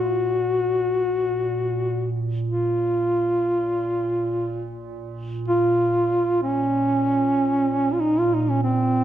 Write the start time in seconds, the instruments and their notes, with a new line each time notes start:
Already playing: ambient pad A#2
0.00 duduk F#4
2.48 duduk F4
3.33 ambient pad A#2
5.48 duduk F4
6.43 duduk C#4
7.93 duduk F4
8.00 duduk D#4
8.19 duduk F4
8.34 duduk D#4
8.41 duduk D#4
8.49 duduk C#4
8.63 duduk C4